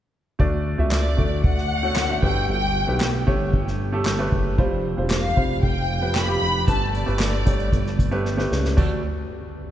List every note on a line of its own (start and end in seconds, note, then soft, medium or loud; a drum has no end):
0.39 0.76 D2 medium
0.39 0.76 A3 medium
0.39 1.14 D4 medium
0.39 0.77 F#4 medium
0.39 0.77 D5 medium
0.39 kick medium
0.78 1.16 C#2 medium
0.78 1.15 A3 medium
0.78 1.16 F#4 medium
0.78 1.16 E5 medium
0.91 1.41 D5 medium
0.91 snare medium
0.91 clap medium
1.17 1.43 D2 medium
1.17 1.79 A3 medium
1.17 1.80 F#4 medium
1.17 1.80 D5 medium
1.17 kick medium
1.44 2.19 D2 medium
1.44 2.19 F#5 medium
1.44 kick medium
1.58 snare soft
1.83 2.08 A3 medium
1.83 2.08 F#4 medium
1.83 2.09 C#5 medium
1.96 snare loud
1.96 clap medium
2.09 2.21 A3 medium
2.09 2.23 F#4 medium
2.09 2.23 E5 medium
2.22 2.47 G1 medium
2.22 2.97 G2 medium
2.22 2.84 A3 medium
2.22 2.85 G4 medium
2.22 2.85 B4 medium
2.22 2.48 G5 medium
2.22 kick medium
2.49 2.86 G1 medium
2.49 2.98 G5 medium
2.87 3.25 B1 medium
2.87 3.25 A3 medium
2.87 3.25 G4 medium
2.87 3.25 B4 medium
3.00 snare loud
3.00 clap medium
3.27 3.52 G1 medium
3.27 3.89 A3 medium
3.27 3.89 G4 medium
3.27 3.89 C#5 medium
3.27 kick medium
3.53 4.28 G1 medium
3.53 kick medium
3.67 snare soft
3.92 4.17 A3 medium
3.92 4.18 G4 medium
3.92 4.18 A4 medium
4.05 snare loud
4.05 clap medium
4.19 4.56 A3 medium
4.19 4.56 G4 medium
4.19 4.57 B4 medium
4.32 4.57 F#1 medium
4.32 kick medium
4.58 4.95 F1 medium
4.58 4.95 G3 medium
4.58 4.96 F4 medium
4.58 4.96 C5 medium
4.58 kick medium
4.97 5.34 E1 medium
4.97 5.34 G3 medium
4.97 5.35 F4 medium
4.97 5.35 C5 medium
5.10 5.60 F5 medium
5.10 snare loud
5.10 clap medium
5.36 5.62 F1 medium
5.36 5.98 G3 medium
5.36 5.98 F4 medium
5.36 5.99 C5 medium
5.36 kick medium
5.63 6.38 F1 medium
5.63 6.16 G5 medium
5.63 kick medium
6.01 6.26 G3 medium
6.01 6.26 F4 medium
6.01 6.27 B4 medium
6.15 6.68 B5 medium
6.15 snare loud
6.15 clap medium
6.27 6.65 G3 medium
6.27 6.65 F4 medium
6.27 6.66 G4 medium
6.42 6.66 F1 medium
6.67 7.05 G1 medium
6.67 7.43 G2 medium
6.67 7.05 A3 medium
6.67 7.05 G4 medium
6.67 7.05 B4 medium
6.67 6.92 A5 medium
6.67 kick medium
6.67 closed hi-hat medium
6.95 7.95 D5 medium
6.95 closed hi-hat medium
7.06 7.44 G1 medium
7.06 7.44 A3 medium
7.06 7.44 G4 medium
7.06 7.44 B4 medium
7.06 closed hi-hat soft
7.19 snare loud
7.19 clap medium
7.19 closed hi-hat medium
7.34 closed hi-hat soft
7.46 7.71 G1 medium
7.46 8.08 A3 medium
7.46 8.08 G4 medium
7.46 7.53 C#5 medium
7.46 kick medium
7.46 closed hi-hat medium
7.53 8.11 D5 medium
7.60 closed hi-hat soft
7.72 8.47 G1 loud
7.72 kick medium
7.72 closed hi-hat medium
7.86 snare soft
7.86 closed hi-hat soft
7.99 kick medium
7.99 closed hi-hat medium
8.11 8.36 A3 medium
8.11 8.36 G4 medium
8.11 8.37 B4 medium
8.11 closed hi-hat soft
8.25 snare soft
8.37 8.75 A3 medium
8.37 8.75 G4 medium
8.37 8.75 B4 medium
8.37 snare soft
8.52 8.76 C#2 medium
8.52 snare medium
8.65 snare medium
8.77 9.01 D2 medium
8.77 9.02 D2 medium
8.77 9.01 A3 medium
8.77 9.01 F#4 medium
8.77 9.01 D5 medium
8.77 kick medium
8.77 floor tom medium
8.77 crash medium